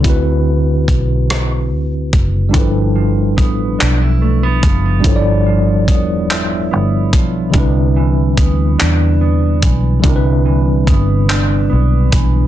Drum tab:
HH |x-xx-x|x-xx-x|x-xx-x|x-xx-x|
CP |------|---x--|---x--|---x--|
SD |---r--|------|------|------|
BD |o-o--o|o-o--o|o-o--o|o-o--o|

HH |x-xx-x|
CP |---x--|
SD |------|
BD |o-o--o|